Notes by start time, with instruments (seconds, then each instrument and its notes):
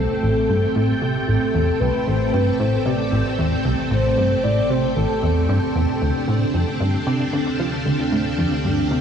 Already playing: synth drone A1, string machine A3 C4 A4 G5, synth texture G4 G5, soft synth lead A4
0.23 analog synth bass A1
0.49 analog synth bass G2
0.76 analog synth bass A2
1.01 analog synth bass C3, soft synth lead G4
1.28 analog synth bass A1, soft synth lead A4
1.54 analog synth bass E2
1.80 analog synth bass C2, soft synth lead B4
2.06 analog synth bass A1, soft synth lead C5
2.33 analog synth bass G2, soft synth lead B4
2.59 analog synth bass A2, soft synth lead C5
2.85 analog synth bass C3, soft synth lead D5
3.12 analog synth bass A1
3.38 analog synth bass E2
3.65 analog synth bass C2
3.91 analog synth bass A1, soft synth lead C5
4.18 analog synth bass G2
4.44 analog synth bass A2, soft synth lead D5
4.70 analog synth bass C3, soft synth lead C5
4.96 analog synth bass A1, soft synth lead A4
5.23 analog synth bass E2
5.49 analog synth bass G2
5.75 analog synth bass E2
6.01 synth drone D2, analog synth bass D2, string machine D4
6.28 analog synth bass A2
6.54 analog synth bass F2
6.80 analog synth bass G2
7.07 analog synth bass C3
7.33 analog synth bass D3, string machine F5
7.59 analog synth bass F3
7.86 analog synth bass D2
8.12 analog synth bass A2
8.38 analog synth bass F2
8.65 analog synth bass G2
8.91 analog synth bass C3